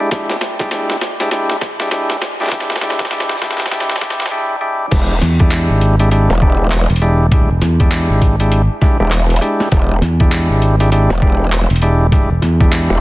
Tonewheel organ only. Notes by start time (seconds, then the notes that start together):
0.00 G#3 D4 E4 G4
0.12 G#3 D4 E4 G4
0.61 G#3 D4 E4 G4
0.72 G#3 D4 E4 G4
1.21 G#3 D4 E4 G4
1.32 G#3 D4 E4 G4
1.81 G#3 D4 E4 G4
1.92 G#3 D4 E4 G4
2.41 G#3 D4 E4 G4
2.52 G#3 D4 E4 G4
2.82 G#3 D4 E4 G4
3.12 G#3 D4 E4 G4
3.42 G#3 D4 E4 G4
3.72 G#3 D4 E4 G4
4.01 G#3 D4 E4 G4
4.31 G#3 D4 E4 G4
4.61 G#3 D4 E4 G4
4.91 G#3 D4 E4 G4
5.40 G#3 D4 E4 G4
6.00 G#3 D4 E4 G4
6.12 G#3 D4 E4 G4
6.42 G#3 D4 E4 G4
7.02 G#3 D4 E4 G4
7.32 G#3 D4 E4 G4
7.80 G#3 D4 E4 G4
8.40 G#3 D4 E4 G4
8.82 G#3 D4 E4 G4
9.00 G#3 D4 E4 G4
9.42 G#3 D4 E4 G4
9.72 G#3 D4 E4 G4
10.20 G#3 D4 E4 G4
10.80 G#3 D4 E4 G4
10.92 G#3 D4 E4 G4
11.22 G#3 D4 E4 G4
11.82 G#3 D4 E4 G4
12.12 G#3 D4 E4 G4
12.60 G#3 D4 E4 G4